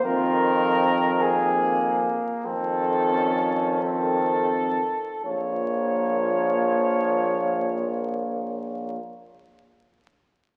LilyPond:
<<
  \new Staff \with { instrumentName = "Cornet" } { \time 4/4 \key bes \minor \tempo 4 = 45 bes'4 aes'8. r16 a'4 a'4 | des''1 | }
  \new Staff \with { instrumentName = "Flugelhorn" } { \time 4/4 \key bes \minor f'8. r16 bes4 c'8 des'8 c'8 r8 | f'1 | }
  \new Staff \with { instrumentName = "Euphonium" } { \time 4/4 \key bes \minor c'4.~ c'16 r16 c'4 c'8 r8 | bes1 | }
  \new Staff \with { instrumentName = "Trombone" } { \clef bass \time 4/4 \key bes \minor ees4.~ ees16 r16 ees4 ees8 r8 | f1 | }
  \new Staff \with { instrumentName = "Tuba" } { \clef bass \time 4/4 \key bes \minor f,4.~ f,16 r16 f,4. r8 | bes,,1 | }
>>